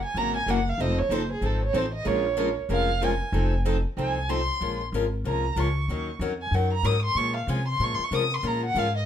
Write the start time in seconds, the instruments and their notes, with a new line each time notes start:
0.05 violin G#5
0.14 upright bass G#1, steel-string acoustic guitar C#3 E3 F#3 A#3 C#4 E4 F#4 A#4, violin A#5
0.36 violin G#5
0.46 upright bass F#1, steel-string acoustic guitar C#3 E3 F#3 A#3 C#4 E4 F#4 A#4, violin F#5
0.69 violin F5
0.78 upright bass F1, steel-string acoustic guitar F3 C4 D#4 A4, violin D#5
0.98 violin C#5
1.09 upright bass F#1, steel-string acoustic guitar F3 C4 D#4 A4, violin C5
1.32 violin G#4
1.41 upright bass G#1, steel-string acoustic guitar F3 C4 D#4 A4
1.45 violin A4
1.64 violin C#5
1.74 upright bass A1, steel-string acoustic guitar F3 C4 D#4 A4, violin C5
1.94 violin D#5
2.05 upright bass A#1, steel-string acoustic guitar F3 G#3 C#4 F4 A#4, violin C#5
2.37 steel-string acoustic guitar F3 G#3 C#4 F4 A#4
2.69 upright bass F1, steel-string acoustic guitar F3 G#3 C#4 F4 A#4, violin F5
3.02 steel-string acoustic guitar F3 G#3 C#4 F4 A#4, violin G#5
3.32 upright bass F1, steel-string acoustic guitar F3 C4 D#4 A4
3.65 steel-string acoustic guitar F3 C4 D#4 A4
3.97 upright bass C2, steel-string acoustic guitar F3 C4 D#4 A4, violin G#5
4.29 steel-string acoustic guitar F3 C4 D#4 A4, violin C6
4.61 upright bass A#1, steel-string acoustic guitar F3 G#3 C#4 F4 A#4
4.92 upright bass G#1, steel-string acoustic guitar F3 G#3 C#4 F4 A#4
5.24 upright bass C2, steel-string acoustic guitar F3 G#3 C#4 F4 A#4, violin A#5
5.56 upright bass C#2, steel-string acoustic guitar F3 G#3 C#4 F4 A#4, violin C#6
5.88 upright bass D#2, steel-string acoustic guitar D#3 F#3 C#4 D#4 A#4
6.19 upright bass F2, steel-string acoustic guitar D#3 F#3 C#4 D#4 A#4
6.41 violin G#5
6.51 upright bass F#2, steel-string acoustic guitar D#3 F#3 C#4 D#4 A#4, violin F#5
6.73 violin A#5
6.83 upright bass G#2, steel-string acoustic guitar D#3 F#3 C#4 D#4 A#4, violin D#6
7.05 violin C6
7.15 upright bass A#2, steel-string acoustic guitar F3 G#3 C#4 F4 A#4, violin C#6
7.36 violin F5
7.47 upright bass C3, steel-string acoustic guitar F3 G#3 C#4 F4 A#4, violin G#5
7.68 violin C6
7.80 upright bass A#2, steel-string acoustic guitar F3 G#3 C#4 F4 A#4, violin C#6
7.94 violin C6
7.99 muted upright bass stroke
8.04 violin C#6
8.11 upright bass C3, steel-string acoustic guitar F3 G#3 C#4 F4 A#4, violin D#6
8.34 violin C6
8.43 upright bass A#2, steel-string acoustic guitar F3 G#3 C#4 F4 A#4, violin A#5
8.65 violin F#5
8.75 upright bass G#2, steel-string acoustic guitar F3 G#3 C#4 F4 A#4, violin F5
8.97 violin D#5